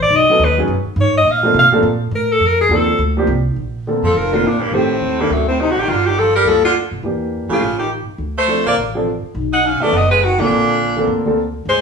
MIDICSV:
0, 0, Header, 1, 6, 480
1, 0, Start_track
1, 0, Key_signature, -2, "major"
1, 0, Tempo, 288600
1, 183, Time_signature, 4, 2, 24, 8
1, 19646, End_track
2, 0, Start_track
2, 0, Title_t, "Alto saxophone"
2, 0, Program_c, 0, 65
2, 35, Note_on_c, 0, 74, 103
2, 263, Note_on_c, 0, 75, 106
2, 288, Note_off_c, 0, 74, 0
2, 739, Note_on_c, 0, 71, 90
2, 764, Note_off_c, 0, 75, 0
2, 986, Note_off_c, 0, 71, 0
2, 1674, Note_on_c, 0, 73, 89
2, 1916, Note_off_c, 0, 73, 0
2, 1948, Note_on_c, 0, 75, 99
2, 2182, Note_on_c, 0, 77, 88
2, 2207, Note_off_c, 0, 75, 0
2, 2622, Note_off_c, 0, 77, 0
2, 2644, Note_on_c, 0, 77, 100
2, 2797, Note_off_c, 0, 77, 0
2, 3579, Note_on_c, 0, 70, 88
2, 3853, Note_on_c, 0, 69, 100
2, 3878, Note_off_c, 0, 70, 0
2, 4100, Note_on_c, 0, 70, 95
2, 4125, Note_off_c, 0, 69, 0
2, 4331, Note_off_c, 0, 70, 0
2, 4341, Note_on_c, 0, 68, 83
2, 4575, Note_on_c, 0, 69, 77
2, 4600, Note_off_c, 0, 68, 0
2, 5017, Note_off_c, 0, 69, 0
2, 6752, Note_on_c, 0, 69, 68
2, 6936, Note_on_c, 0, 70, 75
2, 6961, Note_off_c, 0, 69, 0
2, 7224, Note_on_c, 0, 65, 71
2, 7249, Note_off_c, 0, 70, 0
2, 7434, Note_on_c, 0, 62, 71
2, 7459, Note_off_c, 0, 65, 0
2, 7682, Note_on_c, 0, 58, 73
2, 7707, Note_off_c, 0, 62, 0
2, 7884, Note_on_c, 0, 60, 81
2, 7909, Note_off_c, 0, 58, 0
2, 8666, Note_on_c, 0, 58, 71
2, 8691, Note_off_c, 0, 60, 0
2, 8854, Note_on_c, 0, 57, 63
2, 8879, Note_off_c, 0, 58, 0
2, 9104, Note_off_c, 0, 57, 0
2, 9114, Note_on_c, 0, 60, 72
2, 9329, Note_on_c, 0, 63, 70
2, 9354, Note_off_c, 0, 60, 0
2, 9492, Note_on_c, 0, 66, 74
2, 9517, Note_off_c, 0, 63, 0
2, 9634, Note_on_c, 0, 67, 71
2, 9659, Note_off_c, 0, 66, 0
2, 9798, Note_on_c, 0, 65, 70
2, 9823, Note_off_c, 0, 67, 0
2, 10082, Note_on_c, 0, 67, 76
2, 10107, Note_off_c, 0, 65, 0
2, 10291, Note_on_c, 0, 69, 70
2, 10316, Note_off_c, 0, 67, 0
2, 10557, Note_off_c, 0, 69, 0
2, 10566, Note_on_c, 0, 70, 81
2, 10765, Note_on_c, 0, 69, 75
2, 10790, Note_off_c, 0, 70, 0
2, 11039, Note_off_c, 0, 69, 0
2, 11054, Note_on_c, 0, 65, 75
2, 11162, Note_off_c, 0, 65, 0
2, 12516, Note_on_c, 0, 65, 66
2, 12940, Note_off_c, 0, 65, 0
2, 12959, Note_on_c, 0, 67, 66
2, 13135, Note_off_c, 0, 67, 0
2, 13936, Note_on_c, 0, 72, 78
2, 14370, Note_off_c, 0, 72, 0
2, 14438, Note_on_c, 0, 74, 79
2, 14540, Note_off_c, 0, 74, 0
2, 15854, Note_on_c, 0, 78, 84
2, 16071, Note_on_c, 0, 77, 74
2, 16095, Note_off_c, 0, 78, 0
2, 16338, Note_on_c, 0, 74, 80
2, 16363, Note_off_c, 0, 77, 0
2, 16585, Note_on_c, 0, 75, 87
2, 16610, Note_off_c, 0, 74, 0
2, 16804, Note_off_c, 0, 75, 0
2, 16814, Note_on_c, 0, 71, 79
2, 17035, Note_on_c, 0, 66, 74
2, 17059, Note_off_c, 0, 71, 0
2, 17295, Note_on_c, 0, 62, 81
2, 17320, Note_off_c, 0, 66, 0
2, 18438, Note_off_c, 0, 62, 0
2, 19440, Note_on_c, 0, 72, 86
2, 19646, Note_off_c, 0, 72, 0
2, 19646, End_track
3, 0, Start_track
3, 0, Title_t, "Grand piano"
3, 0, Program_c, 1, 0
3, 492, Note_on_c, 1, 54, 71
3, 492, Note_on_c, 1, 59, 66
3, 502, Note_on_c, 1, 61, 65
3, 504, Note_on_c, 1, 63, 65
3, 517, Note_on_c, 1, 69, 75
3, 655, Note_off_c, 1, 54, 0
3, 655, Note_off_c, 1, 59, 0
3, 660, Note_off_c, 1, 61, 0
3, 661, Note_off_c, 1, 63, 0
3, 668, Note_off_c, 1, 69, 0
3, 958, Note_on_c, 1, 54, 68
3, 969, Note_on_c, 1, 59, 67
3, 985, Note_on_c, 1, 61, 65
3, 986, Note_on_c, 1, 63, 61
3, 986, Note_on_c, 1, 68, 73
3, 1128, Note_off_c, 1, 54, 0
3, 1133, Note_off_c, 1, 59, 0
3, 1142, Note_off_c, 1, 61, 0
3, 1142, Note_off_c, 1, 63, 0
3, 1142, Note_off_c, 1, 68, 0
3, 2380, Note_on_c, 1, 53, 75
3, 2385, Note_on_c, 1, 58, 71
3, 2394, Note_on_c, 1, 60, 65
3, 2398, Note_on_c, 1, 62, 67
3, 2408, Note_on_c, 1, 69, 76
3, 2558, Note_off_c, 1, 53, 0
3, 2561, Note_off_c, 1, 58, 0
3, 2565, Note_off_c, 1, 60, 0
3, 2567, Note_off_c, 1, 62, 0
3, 2573, Note_off_c, 1, 69, 0
3, 2860, Note_on_c, 1, 53, 78
3, 2863, Note_on_c, 1, 58, 69
3, 2871, Note_on_c, 1, 60, 73
3, 2877, Note_on_c, 1, 62, 72
3, 2887, Note_on_c, 1, 69, 85
3, 3038, Note_off_c, 1, 53, 0
3, 3040, Note_off_c, 1, 58, 0
3, 3044, Note_off_c, 1, 60, 0
3, 3046, Note_off_c, 1, 62, 0
3, 3052, Note_off_c, 1, 69, 0
3, 4502, Note_on_c, 1, 53, 70
3, 4504, Note_on_c, 1, 58, 59
3, 4511, Note_on_c, 1, 62, 61
3, 4515, Note_on_c, 1, 60, 65
3, 4521, Note_on_c, 1, 69, 78
3, 4758, Note_off_c, 1, 53, 0
3, 4759, Note_off_c, 1, 58, 0
3, 4762, Note_off_c, 1, 62, 0
3, 4764, Note_off_c, 1, 60, 0
3, 4767, Note_off_c, 1, 69, 0
3, 5270, Note_on_c, 1, 58, 64
3, 5273, Note_on_c, 1, 53, 75
3, 5287, Note_on_c, 1, 60, 59
3, 5291, Note_on_c, 1, 62, 59
3, 5298, Note_on_c, 1, 67, 80
3, 5442, Note_off_c, 1, 58, 0
3, 5443, Note_off_c, 1, 53, 0
3, 5450, Note_off_c, 1, 60, 0
3, 5453, Note_off_c, 1, 62, 0
3, 5456, Note_off_c, 1, 67, 0
3, 6438, Note_on_c, 1, 50, 57
3, 6444, Note_on_c, 1, 58, 49
3, 6458, Note_on_c, 1, 60, 53
3, 6461, Note_on_c, 1, 69, 66
3, 6685, Note_off_c, 1, 50, 0
3, 6688, Note_off_c, 1, 58, 0
3, 6695, Note_off_c, 1, 60, 0
3, 6697, Note_off_c, 1, 69, 0
3, 7198, Note_on_c, 1, 50, 63
3, 7214, Note_on_c, 1, 58, 59
3, 7215, Note_on_c, 1, 60, 53
3, 7234, Note_on_c, 1, 70, 68
3, 7366, Note_off_c, 1, 50, 0
3, 7374, Note_off_c, 1, 58, 0
3, 7375, Note_off_c, 1, 60, 0
3, 7384, Note_off_c, 1, 70, 0
3, 7869, Note_on_c, 1, 51, 64
3, 7884, Note_on_c, 1, 57, 56
3, 7886, Note_on_c, 1, 60, 55
3, 7894, Note_on_c, 1, 67, 74
3, 8121, Note_off_c, 1, 51, 0
3, 8129, Note_off_c, 1, 57, 0
3, 8130, Note_off_c, 1, 60, 0
3, 8134, Note_off_c, 1, 67, 0
3, 8631, Note_on_c, 1, 51, 58
3, 8649, Note_on_c, 1, 60, 52
3, 8651, Note_on_c, 1, 62, 50
3, 8663, Note_on_c, 1, 69, 61
3, 8803, Note_off_c, 1, 51, 0
3, 8812, Note_off_c, 1, 60, 0
3, 8813, Note_off_c, 1, 62, 0
3, 8819, Note_off_c, 1, 69, 0
3, 10744, Note_on_c, 1, 55, 49
3, 10750, Note_on_c, 1, 58, 46
3, 10761, Note_on_c, 1, 65, 49
3, 10775, Note_on_c, 1, 69, 60
3, 11000, Note_off_c, 1, 55, 0
3, 11003, Note_off_c, 1, 58, 0
3, 11008, Note_off_c, 1, 65, 0
3, 11016, Note_off_c, 1, 69, 0
3, 11702, Note_on_c, 1, 52, 47
3, 11703, Note_on_c, 1, 58, 49
3, 11719, Note_on_c, 1, 62, 44
3, 11733, Note_on_c, 1, 67, 56
3, 12411, Note_off_c, 1, 52, 0
3, 12411, Note_off_c, 1, 58, 0
3, 12419, Note_off_c, 1, 62, 0
3, 12426, Note_off_c, 1, 67, 0
3, 12467, Note_on_c, 1, 53, 60
3, 12480, Note_on_c, 1, 57, 55
3, 12488, Note_on_c, 1, 61, 54
3, 12505, Note_on_c, 1, 67, 70
3, 12643, Note_off_c, 1, 53, 0
3, 12649, Note_off_c, 1, 57, 0
3, 12653, Note_off_c, 1, 61, 0
3, 12661, Note_off_c, 1, 67, 0
3, 14100, Note_on_c, 1, 53, 54
3, 14110, Note_on_c, 1, 60, 47
3, 14127, Note_on_c, 1, 62, 51
3, 14127, Note_on_c, 1, 69, 59
3, 14359, Note_off_c, 1, 53, 0
3, 14364, Note_off_c, 1, 60, 0
3, 14373, Note_off_c, 1, 62, 0
3, 14373, Note_off_c, 1, 69, 0
3, 14886, Note_on_c, 1, 53, 61
3, 14888, Note_on_c, 1, 60, 57
3, 14901, Note_on_c, 1, 62, 56
3, 14911, Note_on_c, 1, 69, 66
3, 15053, Note_off_c, 1, 53, 0
3, 15054, Note_off_c, 1, 60, 0
3, 15060, Note_off_c, 1, 62, 0
3, 15066, Note_off_c, 1, 69, 0
3, 16329, Note_on_c, 1, 51, 58
3, 16340, Note_on_c, 1, 59, 56
3, 16341, Note_on_c, 1, 61, 53
3, 16364, Note_on_c, 1, 69, 72
3, 16495, Note_off_c, 1, 51, 0
3, 16500, Note_off_c, 1, 59, 0
3, 16501, Note_off_c, 1, 61, 0
3, 16512, Note_off_c, 1, 69, 0
3, 17289, Note_on_c, 1, 50, 64
3, 17295, Note_on_c, 1, 58, 55
3, 17301, Note_on_c, 1, 60, 54
3, 17318, Note_on_c, 1, 69, 67
3, 17916, Note_off_c, 1, 50, 0
3, 17919, Note_off_c, 1, 58, 0
3, 17922, Note_off_c, 1, 60, 0
3, 17931, Note_off_c, 1, 69, 0
3, 18236, Note_on_c, 1, 50, 62
3, 18245, Note_on_c, 1, 58, 59
3, 18262, Note_on_c, 1, 60, 61
3, 18270, Note_on_c, 1, 69, 65
3, 18686, Note_off_c, 1, 50, 0
3, 18690, Note_off_c, 1, 58, 0
3, 18699, Note_off_c, 1, 60, 0
3, 18703, Note_off_c, 1, 69, 0
3, 18719, Note_on_c, 1, 50, 61
3, 18732, Note_on_c, 1, 58, 59
3, 18748, Note_on_c, 1, 60, 54
3, 18749, Note_on_c, 1, 69, 68
3, 18890, Note_off_c, 1, 50, 0
3, 18897, Note_off_c, 1, 58, 0
3, 18905, Note_off_c, 1, 60, 0
3, 18906, Note_off_c, 1, 69, 0
3, 19646, End_track
4, 0, Start_track
4, 0, Title_t, "Baritone saxophone"
4, 0, Program_c, 2, 67
4, 6719, Note_on_c, 2, 53, 64
4, 6934, Note_off_c, 2, 53, 0
4, 6934, Note_on_c, 2, 53, 56
4, 7195, Note_on_c, 2, 50, 65
4, 7220, Note_off_c, 2, 53, 0
4, 7388, Note_on_c, 2, 46, 58
4, 7413, Note_off_c, 2, 50, 0
4, 7653, Note_on_c, 2, 43, 61
4, 7678, Note_off_c, 2, 46, 0
4, 7883, Note_on_c, 2, 45, 68
4, 7908, Note_off_c, 2, 43, 0
4, 8643, Note_on_c, 2, 43, 68
4, 8668, Note_off_c, 2, 45, 0
4, 8854, Note_on_c, 2, 42, 54
4, 8879, Note_off_c, 2, 43, 0
4, 9115, Note_off_c, 2, 42, 0
4, 9125, Note_on_c, 2, 45, 62
4, 9334, Note_on_c, 2, 48, 59
4, 9359, Note_off_c, 2, 45, 0
4, 9515, Note_on_c, 2, 50, 59
4, 9540, Note_off_c, 2, 48, 0
4, 9685, Note_on_c, 2, 51, 68
4, 9710, Note_off_c, 2, 50, 0
4, 9843, Note_on_c, 2, 50, 60
4, 9868, Note_off_c, 2, 51, 0
4, 10112, Note_on_c, 2, 51, 63
4, 10137, Note_off_c, 2, 50, 0
4, 10317, Note_on_c, 2, 53, 57
4, 10342, Note_off_c, 2, 51, 0
4, 10563, Note_off_c, 2, 53, 0
4, 10573, Note_on_c, 2, 55, 75
4, 10801, Note_on_c, 2, 53, 64
4, 10826, Note_off_c, 2, 55, 0
4, 11046, Note_off_c, 2, 53, 0
4, 11056, Note_on_c, 2, 50, 70
4, 11223, Note_off_c, 2, 50, 0
4, 12466, Note_on_c, 2, 49, 67
4, 12914, Note_off_c, 2, 49, 0
4, 12951, Note_on_c, 2, 51, 57
4, 13131, Note_off_c, 2, 51, 0
4, 13937, Note_on_c, 2, 57, 72
4, 14371, Note_off_c, 2, 57, 0
4, 14412, Note_on_c, 2, 58, 81
4, 14582, Note_off_c, 2, 58, 0
4, 15844, Note_on_c, 2, 63, 75
4, 16059, Note_on_c, 2, 61, 64
4, 16083, Note_off_c, 2, 63, 0
4, 16314, Note_on_c, 2, 57, 77
4, 16339, Note_off_c, 2, 61, 0
4, 16537, Note_on_c, 2, 59, 66
4, 16561, Note_off_c, 2, 57, 0
4, 16807, Note_off_c, 2, 59, 0
4, 16818, Note_on_c, 2, 56, 65
4, 17044, Note_on_c, 2, 51, 62
4, 17069, Note_off_c, 2, 56, 0
4, 17304, Note_on_c, 2, 46, 75
4, 17329, Note_off_c, 2, 51, 0
4, 18443, Note_off_c, 2, 46, 0
4, 19436, Note_on_c, 2, 56, 74
4, 19646, Note_off_c, 2, 56, 0
4, 19646, End_track
5, 0, Start_track
5, 0, Title_t, "Upright bass"
5, 0, Program_c, 3, 32
5, 173, Note_on_c, 3, 35, 76
5, 443, Note_off_c, 3, 35, 0
5, 651, Note_on_c, 3, 39, 91
5, 1117, Note_off_c, 3, 39, 0
5, 1126, Note_on_c, 3, 42, 84
5, 1400, Note_off_c, 3, 42, 0
5, 1597, Note_on_c, 3, 44, 89
5, 2066, Note_off_c, 3, 44, 0
5, 2076, Note_on_c, 3, 46, 74
5, 2554, Note_off_c, 3, 46, 0
5, 2564, Note_on_c, 3, 48, 92
5, 2713, Note_off_c, 3, 48, 0
5, 2713, Note_on_c, 3, 46, 64
5, 2863, Note_off_c, 3, 46, 0
5, 2873, Note_on_c, 3, 45, 65
5, 3029, Note_off_c, 3, 45, 0
5, 3039, Note_on_c, 3, 46, 88
5, 3506, Note_off_c, 3, 46, 0
5, 3516, Note_on_c, 3, 45, 89
5, 3982, Note_off_c, 3, 45, 0
5, 3992, Note_on_c, 3, 41, 73
5, 4466, Note_off_c, 3, 41, 0
5, 4476, Note_on_c, 3, 39, 98
5, 4953, Note_off_c, 3, 39, 0
5, 4963, Note_on_c, 3, 38, 89
5, 5431, Note_off_c, 3, 38, 0
5, 5441, Note_on_c, 3, 36, 89
5, 5915, Note_off_c, 3, 36, 0
5, 5924, Note_on_c, 3, 34, 63
5, 6643, Note_off_c, 3, 34, 0
5, 6690, Note_on_c, 3, 41, 60
5, 6877, Note_off_c, 3, 41, 0
5, 6895, Note_on_c, 3, 29, 71
5, 7343, Note_off_c, 3, 29, 0
5, 7377, Note_on_c, 3, 34, 61
5, 7825, Note_off_c, 3, 34, 0
5, 7850, Note_on_c, 3, 33, 66
5, 8301, Note_off_c, 3, 33, 0
5, 8330, Note_on_c, 3, 39, 66
5, 8781, Note_off_c, 3, 39, 0
5, 8814, Note_on_c, 3, 38, 76
5, 9529, Note_off_c, 3, 38, 0
5, 9584, Note_on_c, 3, 33, 64
5, 9766, Note_off_c, 3, 33, 0
5, 9779, Note_on_c, 3, 31, 68
5, 10692, Note_off_c, 3, 31, 0
5, 10731, Note_on_c, 3, 38, 71
5, 11448, Note_off_c, 3, 38, 0
5, 11499, Note_on_c, 3, 47, 67
5, 11678, Note_off_c, 3, 47, 0
5, 11688, Note_on_c, 3, 40, 68
5, 12407, Note_off_c, 3, 40, 0
5, 12652, Note_on_c, 3, 33, 78
5, 13370, Note_off_c, 3, 33, 0
5, 13611, Note_on_c, 3, 38, 73
5, 14329, Note_off_c, 3, 38, 0
5, 14390, Note_on_c, 3, 36, 59
5, 14571, Note_off_c, 3, 36, 0
5, 14590, Note_on_c, 3, 33, 78
5, 15300, Note_off_c, 3, 33, 0
5, 15544, Note_on_c, 3, 35, 72
5, 16257, Note_off_c, 3, 35, 0
5, 16507, Note_on_c, 3, 30, 80
5, 17219, Note_off_c, 3, 30, 0
5, 17272, Note_on_c, 3, 35, 66
5, 17447, Note_off_c, 3, 35, 0
5, 17457, Note_on_c, 3, 34, 66
5, 18374, Note_off_c, 3, 34, 0
5, 18417, Note_on_c, 3, 38, 74
5, 19334, Note_off_c, 3, 38, 0
5, 19383, Note_on_c, 3, 38, 73
5, 19646, Note_off_c, 3, 38, 0
5, 19646, End_track
6, 0, Start_track
6, 0, Title_t, "Muted upright bass strokes"
6, 469, Note_on_c, 9, 29, 42
6, 636, Note_off_c, 9, 29, 0
6, 1413, Note_on_c, 9, 29, 40
6, 1580, Note_off_c, 9, 29, 0
6, 12454, Note_on_c, 9, 29, 35
6, 12621, Note_off_c, 9, 29, 0
6, 13428, Note_on_c, 9, 29, 34
6, 13594, Note_off_c, 9, 29, 0
6, 15345, Note_on_c, 9, 29, 37
6, 15511, Note_off_c, 9, 29, 0
6, 16315, Note_on_c, 9, 29, 34
6, 16481, Note_off_c, 9, 29, 0
6, 19646, End_track
0, 0, End_of_file